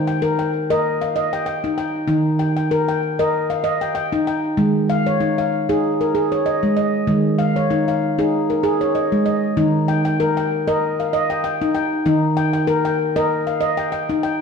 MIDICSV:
0, 0, Header, 1, 2, 480
1, 0, Start_track
1, 0, Tempo, 622407
1, 1614, Time_signature, 4, 2, 24, 8
1, 11116, End_track
2, 0, Start_track
2, 0, Title_t, "Handpan"
2, 0, Program_c, 0, 114
2, 0, Note_on_c, 0, 51, 77
2, 57, Note_on_c, 0, 79, 66
2, 170, Note_on_c, 0, 70, 79
2, 290, Note_off_c, 0, 79, 0
2, 299, Note_on_c, 0, 79, 63
2, 412, Note_off_c, 0, 70, 0
2, 542, Note_on_c, 0, 70, 81
2, 543, Note_on_c, 0, 75, 71
2, 650, Note_off_c, 0, 79, 0
2, 782, Note_on_c, 0, 77, 62
2, 784, Note_off_c, 0, 70, 0
2, 883, Note_off_c, 0, 75, 0
2, 893, Note_on_c, 0, 75, 74
2, 1025, Note_on_c, 0, 79, 65
2, 1117, Note_off_c, 0, 79, 0
2, 1127, Note_on_c, 0, 79, 64
2, 1132, Note_off_c, 0, 77, 0
2, 1133, Note_off_c, 0, 75, 0
2, 1264, Note_on_c, 0, 63, 76
2, 1361, Note_off_c, 0, 79, 0
2, 1370, Note_on_c, 0, 79, 67
2, 1505, Note_off_c, 0, 63, 0
2, 1584, Note_off_c, 0, 51, 0
2, 1601, Note_on_c, 0, 63, 82
2, 1605, Note_on_c, 0, 51, 79
2, 1744, Note_off_c, 0, 79, 0
2, 1845, Note_on_c, 0, 79, 62
2, 1847, Note_off_c, 0, 63, 0
2, 1969, Note_off_c, 0, 79, 0
2, 1978, Note_on_c, 0, 79, 60
2, 2091, Note_on_c, 0, 70, 76
2, 2215, Note_off_c, 0, 79, 0
2, 2225, Note_on_c, 0, 79, 62
2, 2333, Note_off_c, 0, 70, 0
2, 2462, Note_on_c, 0, 75, 66
2, 2463, Note_on_c, 0, 70, 80
2, 2574, Note_off_c, 0, 79, 0
2, 2699, Note_on_c, 0, 77, 67
2, 2705, Note_off_c, 0, 70, 0
2, 2796, Note_off_c, 0, 75, 0
2, 2805, Note_on_c, 0, 75, 78
2, 2941, Note_on_c, 0, 79, 65
2, 3036, Note_off_c, 0, 79, 0
2, 3046, Note_on_c, 0, 79, 68
2, 3050, Note_off_c, 0, 75, 0
2, 3051, Note_off_c, 0, 77, 0
2, 3181, Note_on_c, 0, 63, 82
2, 3286, Note_off_c, 0, 79, 0
2, 3295, Note_on_c, 0, 79, 65
2, 3425, Note_off_c, 0, 63, 0
2, 3500, Note_off_c, 0, 51, 0
2, 3527, Note_on_c, 0, 56, 82
2, 3528, Note_on_c, 0, 51, 73
2, 3668, Note_off_c, 0, 79, 0
2, 3772, Note_off_c, 0, 56, 0
2, 3776, Note_on_c, 0, 77, 71
2, 3906, Note_on_c, 0, 73, 67
2, 4014, Note_on_c, 0, 63, 76
2, 4141, Note_off_c, 0, 77, 0
2, 4151, Note_on_c, 0, 77, 66
2, 4256, Note_off_c, 0, 63, 0
2, 4256, Note_off_c, 0, 73, 0
2, 4390, Note_on_c, 0, 63, 82
2, 4390, Note_on_c, 0, 68, 68
2, 4498, Note_off_c, 0, 77, 0
2, 4630, Note_off_c, 0, 63, 0
2, 4633, Note_on_c, 0, 70, 63
2, 4732, Note_off_c, 0, 68, 0
2, 4741, Note_on_c, 0, 68, 71
2, 4872, Note_on_c, 0, 73, 64
2, 4980, Note_off_c, 0, 68, 0
2, 4980, Note_off_c, 0, 70, 0
2, 4980, Note_on_c, 0, 75, 66
2, 5112, Note_on_c, 0, 56, 75
2, 5209, Note_off_c, 0, 75, 0
2, 5218, Note_on_c, 0, 75, 61
2, 5220, Note_off_c, 0, 73, 0
2, 5352, Note_off_c, 0, 56, 0
2, 5424, Note_off_c, 0, 51, 0
2, 5455, Note_on_c, 0, 51, 78
2, 5455, Note_on_c, 0, 56, 80
2, 5591, Note_off_c, 0, 75, 0
2, 5696, Note_on_c, 0, 77, 70
2, 5698, Note_off_c, 0, 56, 0
2, 5831, Note_on_c, 0, 73, 63
2, 5941, Note_on_c, 0, 63, 79
2, 6068, Note_off_c, 0, 77, 0
2, 6077, Note_on_c, 0, 77, 62
2, 6180, Note_off_c, 0, 73, 0
2, 6181, Note_off_c, 0, 63, 0
2, 6313, Note_on_c, 0, 63, 80
2, 6315, Note_on_c, 0, 68, 67
2, 6423, Note_off_c, 0, 77, 0
2, 6553, Note_off_c, 0, 63, 0
2, 6553, Note_on_c, 0, 70, 60
2, 6650, Note_off_c, 0, 68, 0
2, 6659, Note_on_c, 0, 68, 80
2, 6793, Note_on_c, 0, 73, 60
2, 6900, Note_off_c, 0, 68, 0
2, 6902, Note_off_c, 0, 70, 0
2, 6902, Note_on_c, 0, 75, 60
2, 7034, Note_on_c, 0, 56, 73
2, 7129, Note_off_c, 0, 75, 0
2, 7138, Note_on_c, 0, 75, 62
2, 7142, Note_off_c, 0, 73, 0
2, 7274, Note_off_c, 0, 56, 0
2, 7349, Note_off_c, 0, 51, 0
2, 7380, Note_on_c, 0, 51, 79
2, 7381, Note_on_c, 0, 63, 85
2, 7512, Note_off_c, 0, 75, 0
2, 7622, Note_off_c, 0, 63, 0
2, 7622, Note_on_c, 0, 79, 65
2, 7741, Note_off_c, 0, 79, 0
2, 7750, Note_on_c, 0, 79, 65
2, 7866, Note_on_c, 0, 70, 75
2, 7989, Note_off_c, 0, 79, 0
2, 7998, Note_on_c, 0, 79, 61
2, 8104, Note_off_c, 0, 70, 0
2, 8233, Note_on_c, 0, 70, 78
2, 8233, Note_on_c, 0, 75, 63
2, 8344, Note_off_c, 0, 79, 0
2, 8473, Note_off_c, 0, 70, 0
2, 8481, Note_on_c, 0, 77, 57
2, 8576, Note_off_c, 0, 75, 0
2, 8585, Note_on_c, 0, 75, 74
2, 8714, Note_on_c, 0, 79, 64
2, 8813, Note_off_c, 0, 79, 0
2, 8822, Note_on_c, 0, 79, 70
2, 8823, Note_off_c, 0, 75, 0
2, 8825, Note_off_c, 0, 77, 0
2, 8958, Note_on_c, 0, 63, 76
2, 9049, Note_off_c, 0, 79, 0
2, 9058, Note_on_c, 0, 79, 66
2, 9195, Note_off_c, 0, 63, 0
2, 9270, Note_off_c, 0, 51, 0
2, 9298, Note_on_c, 0, 51, 83
2, 9301, Note_on_c, 0, 63, 86
2, 9431, Note_off_c, 0, 79, 0
2, 9538, Note_on_c, 0, 79, 72
2, 9541, Note_off_c, 0, 63, 0
2, 9656, Note_off_c, 0, 79, 0
2, 9666, Note_on_c, 0, 79, 64
2, 9774, Note_on_c, 0, 70, 83
2, 9901, Note_off_c, 0, 79, 0
2, 9910, Note_on_c, 0, 79, 66
2, 10016, Note_off_c, 0, 70, 0
2, 10149, Note_on_c, 0, 70, 84
2, 10150, Note_on_c, 0, 75, 71
2, 10258, Note_off_c, 0, 79, 0
2, 10387, Note_on_c, 0, 77, 58
2, 10389, Note_off_c, 0, 70, 0
2, 10483, Note_off_c, 0, 75, 0
2, 10493, Note_on_c, 0, 75, 79
2, 10623, Note_on_c, 0, 79, 70
2, 10726, Note_off_c, 0, 79, 0
2, 10734, Note_off_c, 0, 75, 0
2, 10736, Note_off_c, 0, 77, 0
2, 10736, Note_on_c, 0, 79, 67
2, 10870, Note_on_c, 0, 63, 79
2, 10967, Note_off_c, 0, 79, 0
2, 10977, Note_on_c, 0, 79, 65
2, 11108, Note_off_c, 0, 63, 0
2, 11116, Note_off_c, 0, 51, 0
2, 11116, Note_off_c, 0, 79, 0
2, 11116, End_track
0, 0, End_of_file